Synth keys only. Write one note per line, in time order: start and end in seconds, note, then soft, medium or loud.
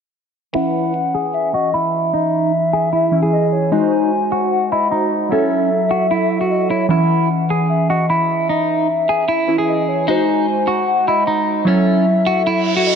0.53 3.08 E3 medium
0.53 3.09 C#4 medium
3.12 3.72 E3 soft
3.12 3.72 C#4 soft
3.12 3.73 E4 medium
3.72 5.28 G#3 medium
3.72 5.29 F#4 medium
3.72 5.29 C5 medium
5.29 6.86 F#3 medium
5.29 6.87 E4 medium
5.29 6.88 A4 medium
6.89 9.44 E3 medium
6.89 9.45 C#4 medium
9.47 10.08 E3 medium
9.47 10.08 C#4 soft
9.47 10.08 E4 medium
10.07 11.64 G#3 medium
10.07 11.64 F#4 medium
10.07 11.65 C5 medium
11.65 12.95 F#3 medium
11.65 12.95 E4 medium
11.65 12.95 A4 medium